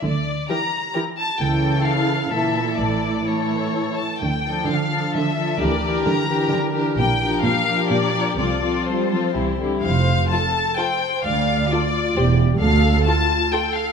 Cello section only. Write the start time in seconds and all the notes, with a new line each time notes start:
0.05 D3
1.41 C#3
2.32 A#2
2.78 A2
4.22 D3
4.69 D3
5.15 D3
5.61 D3
6.07 D3
6.52 D3
6.98 A#2
7.44 A#2
7.90 A#2
8.38 C3
8.87 G3
9.11 F3
9.35 E3
9.59 D3
9.83 F2
11.24 D2
12.17 E2
12.62 D2